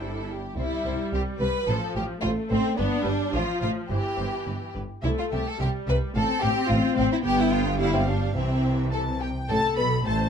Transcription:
0.00 0.36 G1 soft
0.00 0.37 G3 soft
0.00 0.36 D4 soft
0.00 0.27 E4 soft
0.00 0.27 A4 soft
0.30 0.58 G4 soft
0.56 0.65 C2 medium
0.56 1.64 G3 medium
0.56 1.09 E4 medium
0.56 0.66 C5 soft
0.85 0.93 C2 soft
0.85 0.93 C2 medium
0.85 0.94 C5 soft
1.13 1.21 C2 medium
1.13 1.21 G4 medium
1.13 1.21 C5 soft
1.39 1.48 C2 medium
1.39 1.49 C2 medium
1.39 1.67 B4 medium
1.39 1.49 C5 soft
1.67 1.76 A1 medium
1.67 1.76 A2 medium
1.67 2.22 F3 medium
1.67 1.96 A4 medium
1.67 1.77 C5 medium
1.95 2.04 A1 medium
1.95 2.03 A2 medium
1.95 2.03 G4 medium
1.95 2.05 C5 medium
2.22 2.32 A1 medium
2.22 2.31 A2 medium
2.22 2.77 A3 medium
2.22 2.30 F4 medium
2.22 2.33 C5 medium
2.49 2.60 A1 medium
2.49 2.59 A2 medium
2.49 2.78 C4 loud
2.49 2.57 C5 medium
2.77 2.87 G1 medium
2.77 2.87 G2 medium
2.77 3.06 B3 medium
2.77 3.33 D4 medium
2.77 2.85 B4 medium
3.05 3.14 G1 medium
3.05 3.14 G2 medium
3.05 3.34 G3 medium
3.05 3.13 B4 medium
3.33 3.42 A1 medium
3.33 3.42 A2 medium
3.33 3.90 F3 medium
3.33 3.60 F4 medium
3.33 3.42 C5 medium
3.61 3.70 A1 medium
3.61 3.70 A2 medium
3.61 3.69 F4 medium
3.61 3.69 C5 soft
3.88 3.98 G1 medium
3.88 3.98 G2 medium
3.88 4.75 E3 medium
3.88 4.73 G4 medium
3.88 3.96 C5 medium
4.17 4.27 G1 soft
4.17 4.27 G2 soft
4.17 4.25 C5 soft
4.45 4.55 G1 medium
4.45 4.55 G2 medium
4.45 4.53 B4 soft
4.74 4.84 G1 medium
4.74 4.83 G2 soft
4.74 4.82 B4 soft
5.02 5.12 C2 medium
5.02 5.11 C3 medium
5.02 5.55 A3 medium
5.02 5.09 E4 medium
5.02 5.10 E5 medium
5.18 5.24 F4 medium
5.32 5.40 C2 medium
5.32 5.40 C3 medium
5.32 5.46 G4 medium
5.32 5.40 E5 medium
5.48 5.61 A4 medium
5.59 5.68 C2 medium
5.59 5.68 C3 medium
5.59 6.15 G3 medium
5.59 5.68 G4 medium
5.59 5.67 E5 medium
5.87 5.96 C2 medium
5.87 5.95 C3 medium
5.87 5.97 B4 medium
5.87 5.95 E5 medium
6.15 6.24 A1 medium
6.15 6.23 A2 medium
6.15 7.22 C4 medium
6.15 6.43 A4 medium
6.15 6.23 F5 medium
6.40 6.51 A1 medium
6.40 6.50 A2 medium
6.40 6.70 G4 loud
6.40 6.48 F5 medium
6.68 6.78 A1 medium
6.68 6.77 A2 medium
6.68 6.97 F4 medium
6.68 6.76 F5 medium
6.95 7.06 A1 medium
6.95 7.04 A2 medium
6.95 7.10 C4 loud
6.95 7.03 F5 medium
7.12 7.17 E4 medium
7.23 8.33 G1 medium
7.23 8.32 G2 medium
7.23 7.79 B3 medium
7.23 7.38 G4 loud
7.23 7.75 G5 medium
7.40 7.53 E4 medium
7.53 7.80 F4 medium
7.79 8.35 G3 medium
7.79 7.93 E4 medium
7.79 8.36 F5 medium
7.94 8.08 C4 medium
8.09 8.37 D4 medium
8.35 9.28 C2 medium
8.35 9.27 C3 medium
8.35 9.19 E3 medium
8.35 8.92 C4 medium
8.35 8.87 E5 medium
8.91 9.01 A4 medium
8.91 9.18 A5 medium
9.20 9.29 G4 medium
9.20 9.49 G5 medium
9.48 9.58 A1 medium
9.48 9.57 A2 medium
9.48 10.01 A4 medium
9.48 9.56 A4 medium
9.48 9.78 A5 loud
9.76 10.05 B1 medium
9.76 10.05 B2 medium
9.76 9.84 B4 medium
9.76 10.05 B5 medium
10.05 10.29 A1 medium
10.05 10.29 A2 medium
10.05 10.14 A4 medium
10.05 10.29 C5 medium
10.05 10.29 A5 medium

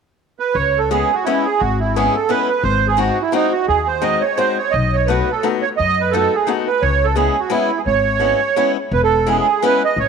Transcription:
0.39 0.56 B4 medium
0.54 1.01 C#2 medium
0.54 0.79 C#5 medium
0.78 0.90 A4 medium
0.91 1.10 G#3 medium
0.91 1.10 B3 soft
0.91 1.10 C#4 soft
0.91 1.10 E4 soft
0.91 1.15 G#4 medium
1.13 1.26 F#4 medium
1.24 1.45 G#3 soft
1.24 1.45 B3 soft
1.24 1.46 C#4 soft
1.24 1.45 E4 medium
1.24 1.46 E4 soft
1.45 1.61 G#4 medium
1.59 2.06 G#1 medium
1.59 1.80 F#4 medium
1.79 1.96 E4 medium
1.95 2.15 G#3 soft
1.95 2.15 B3 soft
1.95 2.15 C#4 soft
1.95 2.15 E4 medium
1.95 2.15 G#4 medium
2.15 2.31 A4 medium
2.29 2.48 G#3 medium
2.29 2.48 B3 soft
2.29 2.49 C#4 soft
2.29 2.49 E4 soft
2.29 2.47 B4 medium
2.49 2.63 B4 medium
2.63 3.08 G#1 medium
2.63 2.87 C5 loud
2.87 2.99 G#4 medium
2.97 3.17 G#3 medium
2.97 3.17 C4 soft
2.97 3.17 D#4 soft
2.97 3.17 F#4 soft
2.97 3.23 F#4 medium
3.21 3.33 E4 medium
3.32 3.52 G#3 soft
3.32 3.52 C4 soft
3.32 3.52 D#4 medium
3.32 3.53 D#4 medium
3.32 3.52 F#4 medium
3.52 3.67 F#4 medium
3.68 4.14 D#2 medium
3.68 3.87 G#4 medium
3.87 4.03 C5 medium
4.02 4.21 G#3 medium
4.02 4.22 C4 soft
4.02 4.22 D#4 soft
4.02 4.22 F#4 soft
4.02 4.22 D#5 medium
4.21 4.38 C#5 medium
4.37 4.57 G#3 soft
4.37 4.57 C4 soft
4.37 4.58 D#4 soft
4.37 4.58 F#4 medium
4.37 4.57 C5 medium
4.58 4.74 C#5 medium
4.71 5.19 B1 medium
4.71 4.97 D#5 medium
4.94 5.08 C#5 medium
5.06 5.28 A3 soft
5.06 5.28 B3 soft
5.06 5.28 D#4 soft
5.06 5.32 B4 medium
5.10 5.29 F#4 medium
5.31 5.48 A4 medium
5.43 5.63 A3 medium
5.43 5.63 B3 soft
5.43 5.63 D#4 soft
5.43 5.63 F#4 soft
5.62 5.69 C#5 medium
5.77 6.24 F#2 medium
5.77 6.02 D#5 loud
6.00 6.13 B4 medium
6.11 6.32 A3 soft
6.11 6.33 B3 soft
6.11 6.33 D#4 soft
6.11 6.33 F#4 soft
6.11 6.36 A4 medium
6.35 6.52 G#4 medium
6.47 6.66 A3 soft
6.47 6.67 B3 soft
6.47 6.67 D#4 medium
6.47 6.67 F#4 medium
6.67 6.83 B4 medium
6.81 7.27 C#2 medium
6.81 7.06 C#5 medium
7.04 7.16 A4 medium
7.16 7.35 G#3 medium
7.16 7.35 B3 soft
7.16 7.36 C#4 soft
7.16 7.36 E4 medium
7.16 7.40 G#4 medium
7.40 7.52 F#4 medium
7.50 7.69 G#3 medium
7.50 7.70 B3 soft
7.50 7.70 C#4 medium
7.50 7.70 E4 medium
7.50 7.79 E4 medium
7.78 7.81 G#4 medium
7.86 8.32 G#1 medium
7.86 8.72 C#5 medium
8.20 8.40 G#3 soft
8.20 8.40 B3 soft
8.20 8.40 C#4 soft
8.20 8.40 E4 soft
8.56 8.76 G#3 medium
8.56 8.76 B3 medium
8.56 8.76 C#4 soft
8.56 8.76 E4 medium
8.91 9.37 E1 medium
8.91 9.01 B4 medium
9.03 9.29 A4 medium
9.27 9.46 G#3 medium
9.27 9.46 B3 soft
9.27 9.46 C#4 soft
9.27 9.46 E4 medium
9.27 9.37 G#4 medium
9.38 9.64 G#4 medium
9.62 9.81 G#3 medium
9.62 9.81 B3 soft
9.62 9.81 C#4 soft
9.62 9.82 E4 medium
9.62 9.83 B4 medium
9.85 9.99 D#5 medium
9.96 10.08 A1 medium
9.96 10.08 C#5 medium

